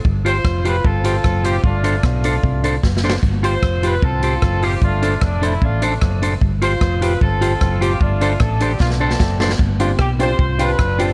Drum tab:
HH |------x-----------x-----------x-----------x-----|------x-----------x-----------x-----------------|p-----x-----------x-----------x-----------o-----|p-----x-----------x-----------x-----------x-----|
SD |------------r-----------------------r-----------|------------r-----------------------o---o---o---|------------r-----------------------r-----------|------------r-----------------------r-----------|
BD |o-----------o-----------o-----------o-----------|o-----------o-----------o-----------o-----------|o-----------o-----------o-----------o-----------|o-----------o-----------o-----------o-----------|

HH |------x-----------x-----------x-----------x-----|------x-----------x-----------------------------|------x-----------x-----------x-----------x-----|
SD |------------r-----------------------r-----------|------------r-----------o--o-----o--o-----o--o--|------------r-----------------------r-----------|
BD |o-----------o-----------o-----------o-----------|o-----------o-----------o-----------o-----------|o-----------o-----------o-----------o-----------|